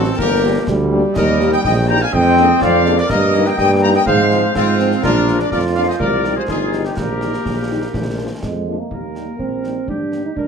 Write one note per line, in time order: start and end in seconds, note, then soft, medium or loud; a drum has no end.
0.00 0.11 A1 loud
0.00 0.15 C4 loud
0.00 0.15 A4 loud
0.18 0.60 G1 loud
0.18 0.68 A#3 loud
0.18 0.65 G4 loud
0.18 0.64 A#4 loud
0.18 concert bass drum loud
0.18 snare medium
0.43 0.52 G3 medium
0.43 0.52 A#3 medium
0.43 0.52 D4 medium
0.67 1.04 D2 loud
0.67 1.95 G3 loud
0.67 concert bass drum medium
0.67 snare medium
0.92 1.00 G3 medium
0.92 1.01 A#3 loud
0.92 1.01 D4 medium
1.15 1.57 D#2 loud
1.15 1.50 A#4 loud
1.15 1.49 D#5 loud
1.15 1.50 D#5 loud
1.15 concert bass drum medium
1.15 snare medium
1.15 crash medium
1.40 1.49 G3 medium
1.40 1.49 A#3 medium
1.40 1.49 D#4 medium
1.40 snare medium
1.52 1.59 D#5 loud
1.52 1.57 G5 loud
1.52 1.63 G5 loud
1.52 snare medium
1.64 2.05 A#1 loud
1.64 1.76 D#5 loud
1.64 1.87 G5 loud
1.64 1.70 G5 loud
1.64 concert bass drum medium
1.64 snare medium
1.89 1.98 G3 loud
1.89 1.98 A#3 medium
1.89 1.98 D#4 medium
1.89 2.00 G5 loud
1.89 2.01 A#5 loud
1.89 2.00 A#5 loud
2.01 2.13 F5 loud
2.01 2.12 G#5 loud
2.01 2.13 G#5 loud
2.12 2.54 F2 loud
2.12 3.06 C4 loud
2.12 2.61 D#5 loud
2.12 2.58 G5 loud
2.12 2.62 G5 loud
2.12 concert bass drum loud
2.37 2.46 G#3 medium
2.37 2.46 A#3 medium
2.37 2.46 D4 loud
2.37 snare medium
2.61 3.02 F2 loud
2.61 2.95 D5 loud
2.61 2.96 F5 loud
2.61 2.99 F5 loud
2.61 concert bass drum medium
2.61 snare medium
2.86 2.95 G#3 loud
2.86 2.95 A#3 medium
2.86 2.95 D4 loud
2.86 snare medium
2.98 3.08 A#4 loud
2.98 3.10 D5 loud
2.98 snare medium
3.10 3.50 G2 loud
3.10 4.07 A#3 loud
3.10 3.44 A#4 loud
3.10 3.44 D#5 loud
3.10 3.46 D#5 loud
3.10 concert bass drum medium
3.10 snare medium
3.10 crash soft
3.34 3.43 G3 medium
3.34 3.43 A#3 loud
3.34 3.43 D#4 medium
3.34 snare medium
3.46 3.56 D#5 loud
3.46 3.51 G5 loud
3.46 3.58 G5 loud
3.46 snare medium
3.58 3.99 G2 loud
3.58 3.69 D#5 loud
3.58 3.81 G5 loud
3.58 3.70 G5 loud
3.58 concert bass drum medium
3.58 snare medium
3.82 3.91 G3 medium
3.82 3.91 A#3 medium
3.82 3.92 D#4 medium
3.82 3.94 G5 loud
3.82 3.88 A#5 loud
3.82 3.94 A#5 loud
3.95 4.00 D#5 loud
3.95 4.00 G5 loud
3.95 4.01 G5 loud
4.06 4.47 G#2 loud
4.06 4.52 G#3 loud
4.06 4.52 C5 loud
4.06 4.52 F5 loud
4.06 concert bass drum loud
4.31 4.40 F3 medium
4.31 4.40 C4 medium
4.31 snare medium
4.55 4.95 G#2 loud
4.55 5.00 C4 loud
4.55 5.00 F4 loud
4.55 concert bass drum medium
4.55 snare medium
4.79 4.88 F3 medium
4.79 4.88 C4 medium
4.79 snare medium
4.91 snare medium
5.03 5.44 A#1 loud
5.03 5.49 D4 loud
5.03 5.37 F4 loud
5.03 5.40 A#4 loud
5.03 5.37 A#4 loud
5.03 concert bass drum loud
5.03 snare medium
5.03 crash soft
5.28 5.37 F3 medium
5.28 5.37 A#3 medium
5.28 5.36 D4 medium
5.28 snare medium
5.40 5.51 A#4 loud
5.40 5.45 D5 loud
5.40 5.50 D5 loud
5.40 snare medium
5.51 5.92 F2 loud
5.51 6.45 F4 loud
5.51 5.63 A#4 loud
5.51 5.62 D5 loud
5.51 5.75 D5 loud
5.51 concert bass drum medium
5.51 snare medium
5.75 5.84 F3 medium
5.75 5.84 A#3 medium
5.75 5.84 D4 medium
5.75 5.87 D5 loud
5.75 5.81 F5 loud
5.75 5.88 F5 loud
5.87 6.00 C5 medium
5.87 5.94 D#5 loud
5.99 6.41 C2 medium
5.99 6.34 A#4 loud
5.99 6.34 D5 loud
5.99 concert bass drum medium
6.24 6.33 D#3 medium
6.24 6.33 G3 medium
6.24 6.33 D#4 medium
6.24 snare medium
6.36 6.48 G#4 medium
6.36 6.48 C5 medium
6.36 6.42 C5 loud
6.48 6.89 G1 medium
6.48 6.94 D#4 medium
6.48 6.83 F4 loud
6.48 6.85 G#4 medium
6.48 6.83 G#4 loud
6.48 concert bass drum medium
6.48 snare medium
6.72 6.81 D#3 medium
6.72 6.81 G3 medium
6.72 6.81 D#4 medium
6.72 snare medium
6.85 6.96 D#4 medium
6.85 6.97 G4 medium
6.85 snare medium
6.97 7.37 A#1 medium
6.97 8.63 A#3 medium
6.97 8.38 G4 medium
6.97 8.38 A#4 loud
6.97 8.38 A#4 medium
6.97 concert bass drum medium
6.97 snare medium
6.97 crash soft
7.21 7.30 D#3 medium
7.21 7.30 G3 medium
7.21 7.30 D#4 medium
7.21 snare medium
7.33 snare medium
7.45 7.86 A#1 medium
7.45 concert bass drum medium
7.45 snare medium
7.69 7.78 D#3 medium
7.69 7.78 G3 medium
7.69 7.78 D#4 medium
7.94 8.30 A#1 medium
7.94 concert bass drum medium
7.94 snare medium
8.18 8.26 F3 medium
8.18 8.26 A#3 medium
8.18 8.27 D4 medium
8.42 8.83 F2 medium
8.42 8.80 G#3 medium
8.42 concert bass drum medium
8.42 snare medium
8.66 8.75 F3 medium
8.66 8.75 A#3 medium
8.66 8.75 D4 medium
8.78 9.38 A#3 medium
8.91 9.31 D#2 medium
8.91 9.84 A#4 medium
8.91 concert bass drum medium
9.15 9.24 G3 soft
9.15 9.24 A#3 soft
9.15 9.24 D#4 soft
9.15 9.24 G5 soft
9.15 snare soft
9.39 9.80 A#1 soft
9.39 9.90 C4 medium
9.39 concert bass drum medium
9.64 9.73 G3 soft
9.64 9.73 A#3 soft
9.64 9.73 D#4 soft
9.64 9.73 G5 soft
9.64 snare soft
9.88 10.28 G2 medium
9.88 10.24 D4 medium
9.88 10.34 G4 soft
9.88 concert bass drum medium
10.12 10.21 G3 soft
10.12 10.21 A#3 soft
10.12 10.21 D4 soft
10.12 10.21 G5 soft
10.12 snare soft
10.25 10.30 D#4 medium
10.36 10.48 D2 medium
10.36 10.48 D4 medium
10.36 10.48 A#4 medium
10.36 concert bass drum medium